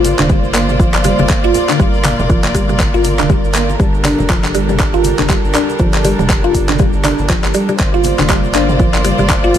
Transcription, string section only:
Already playing: A#3 F4 C5 D5
1.79 A#4
3.79 G3 D4 A4
7.79 A#3 F4 C5 D5

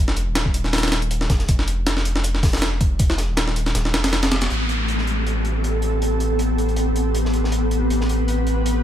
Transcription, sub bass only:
Already playing: F1
0.27 D#1
1.30 F1
1.49 F1
3.29 D#1
3.75 D#1
3.94 F1
4.50 A1

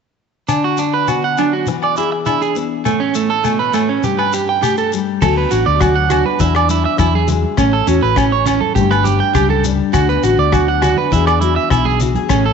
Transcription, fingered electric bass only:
5.22 D2
5.52 A1
5.67 D2
6.40 E2
6.99 E2
7.58 A1
7.88 E2
8.03 A1
8.76 G1
9.35 C#2
9.94 D2
10.23 A1
10.37 D2
11.12 E2
11.71 B1
12.30 A1

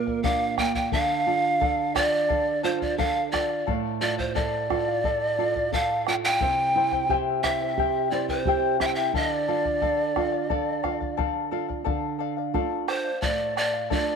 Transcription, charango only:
0.07 D5 F5
0.24 A#4 D5 F5
0.59 A#4 D5 F5
0.75 D5 F5
0.93 A4 D5 F5
1.27 A4 D5 F5
1.43 D5 F5
1.61 A4 D5 F5
1.95 A4 D5 F5
2.12 D5 F5
2.28 A4 D5 F5
2.63 A4 D5 F5
2.80 D5 F5
2.98 A4 D5 F5
3.33 A4 D5 F5
3.50 D5 F5
3.67 A4 D5 F5
4.00 A4 D5 F5
4.18 D5 F5
4.35 A4 D5 F5
4.70 A4 D5 F5
4.88 D5 F5
5.05 A4 D5 F5
5.39 A4 D5 F5
5.56 D5 F5
5.73 A4 D5 F5
6.07 A4 D5 F5
6.24 D5 F5
6.41 E4 G4 C5 E5 G5
6.76 E4 C5 E5 G5
6.93 E4 C5 G5
7.10 E4 G4 C5 E5 G5
7.44 E4 C5 E5 G5
7.62 E4 C5 G5
7.79 E4 G4 C5 E5 G5
8.13 E4 C5 E5 G5
8.30 E4 C5 G5
8.48 E4 G4 C5 E5 G5
8.81 E4 C5 E5 G5
8.97 E4 C5 G5
9.14 A4 D5 F5
9.48 A4 D5 F5
9.64 D5 F5
9.82 A4 D5 F5
10.16 A4 D5 F5
10.32 D5 F5
10.50 A4 D5 F5
10.83 A4 D5 F5
11.00 D5 F5
11.17 A4 D5 F5
11.51 A4 D5 F5
11.68 D5 F5
11.84 A4 D5 F5
12.19 A4 D5 F5
12.37 D5 F5
12.54 A4 D5 F5
12.88 A4 D5 F5
13.04 D5 F5
13.22 A4 D5 F5
13.56 A4 D5 F5
13.73 D5 F5
13.90 A4 D5 F5

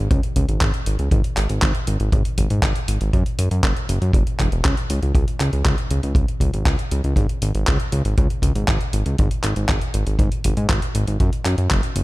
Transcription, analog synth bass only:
0.11 C#2
0.36 C#2
0.49 G#1
0.61 G#1
0.87 G#1
0.99 C#2
1.11 G#1
1.37 G#1
1.50 G#1
1.62 G#1
1.87 G#1
2.00 G#1
2.12 G#1
2.38 G#1
2.50 G#2
2.62 G#1
2.88 G#1
3.01 G#1
3.13 F#2
3.39 F#2
3.51 F#2
3.63 F#1
3.89 F#1
4.02 F#2
4.13 F#1
4.40 E1
4.52 E1
4.65 C#2
4.90 C#2
5.03 C#2
5.15 C#2
5.40 C#2
5.53 C#2
5.65 C#2
5.91 C#2
6.03 C#2
6.15 C#2
6.40 C#2
6.54 G#1
6.65 C#2
6.92 C#2
7.04 C#2
7.16 G#1
7.42 G#1
7.55 G#1
7.68 C#2
7.92 C#2
8.05 G#1
8.18 C#2
8.42 C#2
8.55 G#1
8.68 G#1
8.93 G#1
9.06 C#2
9.19 G#1
9.44 G#1
9.56 G#1
9.69 G#1
9.94 G#1
10.07 G#1
10.19 G#1
10.45 G#1
10.57 G#2
10.69 G#1
10.95 G#1
11.08 G#1
11.20 F#2
11.45 F#2
11.58 F#2
11.71 F#1
11.96 F#1

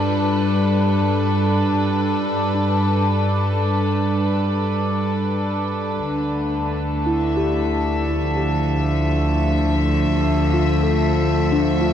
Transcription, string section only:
Already playing: G3 D4 A4 B4
6.07 D3
6.19 A3
7.10 E5
8.14 F3

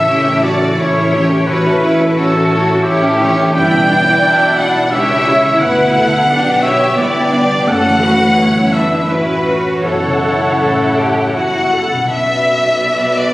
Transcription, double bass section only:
0.09 A1
0.79 A1
1.48 A1
2.16 A1
2.85 A1
3.55 G1
4.24 B1
4.93 C#2
5.61 D2
6.29 B1
6.99 G1
7.68 F#1
8.38 G1
9.10 A1
9.84 B1
10.60 A1
11.37 G1
12.11 B1

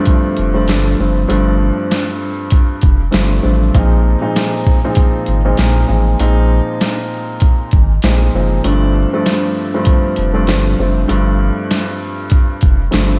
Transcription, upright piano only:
Already playing: G2 F3 A3 C4 D4
0.54 G2 F3 A3 C4 D4
0.68 G2 F3 A3 C4 D4
1.00 G2 F3 A3 C4 D4
1.28 G2 F3 A3 C4 D4
3.11 G2 F3 A3 C4 D4
3.43 G2 F3 A3 C4 D4
3.74 A#2 F3 G#3 C4 D#4
4.21 A#2 F3 G#3 C4 D#4
4.84 A#2 F3 G#3 C4 D#4
5.45 A#2 F3 G#3 C4 D#4
5.58 A#2 F3 G#3 C4 D#4
5.88 A#2 F3 G#3 C4 D#4
6.20 A#2 F3 G#3 C4 D#4
8.04 A#2 F3 G#3 C4 D#4
8.35 A#2 F3 G#3 C4 D#4
8.64 G2 F3 A3 C4 D4
9.13 G2 F3 A3 C4 D4
9.74 G2 F3 A3 C4 D4
10.33 G2 F3 A3 C4 D4
10.48 G2 F3 A3 C4 D4
10.79 G2 F3 A3 C4 D4
11.08 G2 F3 A3 C4 D4
12.91 G2 F3 A3 C4 D4

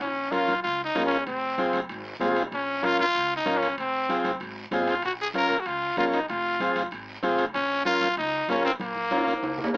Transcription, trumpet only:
0.01 C#4
0.32 F4
0.63 F4
0.84 D#4
1.06 C#4
1.27 C4
2.54 C#4
2.85 F4
3.00 F4
3.36 D#4
3.57 C#4
3.78 C4
4.89 F4
5.05 F#4
5.21 G#4
5.37 A#4
5.60 F#4
5.66 F4
5.98 F4
6.13 D#4
6.29 F4
7.55 C#4
7.85 F4
8.18 D#4
8.50 C#4
8.65 C4
8.81 A#3

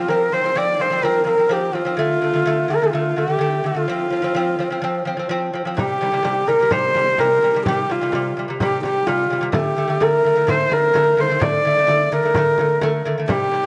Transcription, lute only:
0.08 F3 C4
0.32 F3 C4
0.44 F3 C4
0.55 F3 C4
0.79 F3 C4
0.90 F3 C4
1.03 F3 C4
1.25 F3 C4
1.38 F3 C4
1.49 F3 C4
1.73 F3 C4
1.85 F3 C4
1.97 D3 A3
2.22 D3 A3
2.34 D3 A3
2.46 D3 A3
2.68 D3 A3
2.82 D3 A3
2.93 D3 A3
3.16 D3 A3
3.28 D3 A3
3.39 D3 A3
3.64 D3 A3
3.75 D3 A3
3.88 F3 C4
4.10 F3 C4
4.22 F3 C4
4.35 F3 C4
4.59 F3 C4
4.70 F3 C4
4.82 F3 C4
5.05 F3 C4
5.17 F3 C4
5.29 F3 C4
5.54 F3 C4
5.65 F3 C4
5.77 C3 G3
6.01 C3 G3
6.12 C3 G3
6.23 C3 G3
6.47 C3 G3
6.60 C3 G3
6.71 C3 G3
6.94 C3 G3
7.19 C3 G3
7.42 C3 G3
7.54 C3 G3
7.66 C3 G3
7.90 C3 G3
8.01 C3 G3
8.13 C3 G3
8.37 C3 G3
8.48 C3 G3
8.61 C3 G3
8.84 C3 G3
9.07 C3 G3
9.30 C3 G3
9.41 C3 G3
9.52 D3 A3
9.76 D3 A3
9.88 D3 A3
10.00 D3 A3
10.24 D3 A3
10.35 D3 A3
10.47 D3 A3
10.70 D3 A3
10.94 D3 A3
11.17 D3 A3
11.29 D3 A3
11.40 D3 A3
11.65 D3 A3
11.76 D3 A3
11.87 D3 A3
12.12 D3 A3
12.23 D3 A3
12.36 D3 A3
12.59 D3 A3
12.82 D3 A3
13.05 D3 A3
13.18 D3 A3
13.28 C3 G3
13.51 C3 G3

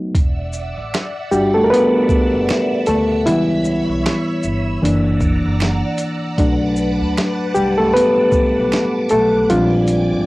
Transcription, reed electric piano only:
Already playing: F#3 A3 B3 D#4 F#4
1.32 G3 D4 F#4 G4
1.54 A3 A4
1.64 A#4
1.70 B3 B4
2.87 A3 A4
3.26 E3 G3 B3 E4
4.82 E3 A#3 D4
6.38 F#3 A3 D4
7.54 G3 G4
7.78 A3 A4
7.94 B3 B4
9.11 A3 A4
9.50 F3 G3 G#3 C4 D4 F4

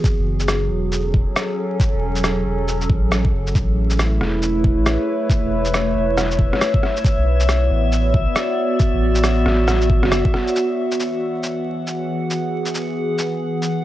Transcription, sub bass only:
0.19 F#1
0.70 E1
1.93 E1
2.46 E1
2.90 A1
3.33 F#1
3.55 A1
4.21 E1
4.77 A1
5.43 E1
5.95 E1
7.18 B1
7.71 A1
8.94 A1
9.46 A1
10.03 F#1

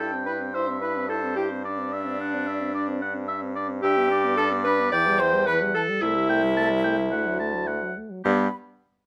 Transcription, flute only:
0.00 A5
0.26 B5
0.54 C6
0.81 B5
1.09 A5
1.37 G5
1.65 D5
3.82 G5
4.38 A5
4.66 B5
4.92 D6
5.20 C6
5.47 B5
5.76 A5
6.03 E5
8.25 B5

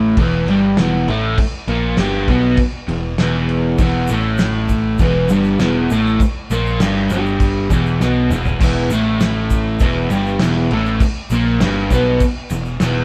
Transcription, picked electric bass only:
Already playing: A1
0.17 E1
0.48 G1
0.78 E1
1.08 A1
1.38 muted picked electric bass stroke
1.67 A#1
1.97 G1
2.28 B1
2.58 muted picked electric bass stroke
2.88 E1
3.18 E1
3.79 E1
4.09 A1
4.99 E1
5.30 G1
5.60 E1
5.90 A1
6.20 muted picked electric bass stroke
6.50 A#1
6.80 G1
7.10 G1
7.70 E1
8.01 B1
8.30 E1
8.61 E1
8.89 A1
9.80 E1
10.10 G1
10.41 E1
10.71 A1
11.00 muted picked electric bass stroke
11.30 A#1
11.60 G1
11.90 B1
12.21 muted picked electric bass stroke
12.50 E1
12.80 E1

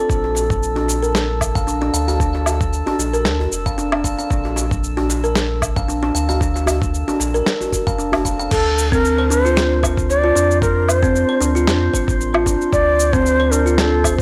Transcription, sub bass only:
0.10 A#1
1.93 D2
2.99 A#1
3.25 D2
3.52 F1
4.31 A#1
6.15 D2
7.20 A#1
7.99 F1
8.51 D2
10.36 F2
11.41 D2
11.67 F2
11.94 A1
12.73 D2

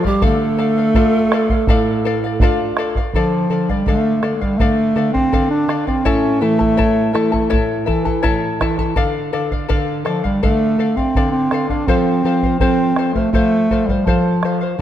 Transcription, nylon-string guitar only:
0.23 D3
0.95 A3 D4 F4
1.69 A2
2.40 A3 D4 F4
3.14 D3
3.50 D3
3.86 D3
4.23 D3
4.59 D3
4.96 D3
5.32 D3
5.68 D3
6.06 A2
6.42 E3
6.79 A2
7.15 E3
7.51 A2
7.88 E3
8.25 A2
8.61 E3
8.97 D3
9.34 D3
9.70 D3
10.07 D3
10.43 D3
10.79 D3
11.17 D3
11.52 D3
11.88 F3
12.25 F3
12.61 F3
12.96 F3
13.33 F3
13.70 F3
14.07 F3
14.44 F3

